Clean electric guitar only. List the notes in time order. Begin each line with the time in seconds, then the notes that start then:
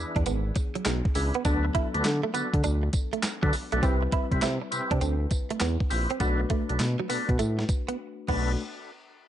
0.16 D4
0.26 B3
0.56 muted clean electric guitar stroke
0.75 F#3
0.86 G#3
1.16 muted clean electric guitar stroke
1.35 B3
1.45 D4
1.65 muted clean electric guitar stroke
1.75 E4
2.04 muted clean electric guitar stroke
2.23 A3
2.34 B3
2.64 D4
2.83 muted clean electric guitar stroke
3.13 A3
3.43 F#3
3.53 muted clean electric guitar stroke
3.72 A3
3.83 C4
4.03 muted clean electric guitar stroke
4.13 E4
4.42 E4
4.62 muted clean electric guitar stroke
4.91 D4
5.01 C4
5.31 muted clean electric guitar stroke
5.51 A3
5.61 B3
5.91 muted clean electric guitar stroke
6.11 C4
6.21 B3
6.40 muted clean electric guitar stroke
6.50 A3
6.80 muted clean electric guitar stroke
7.00 F#3
7.10 B3
7.39 A3
7.59 muted clean electric guitar stroke
7.88 B3
8.29 B3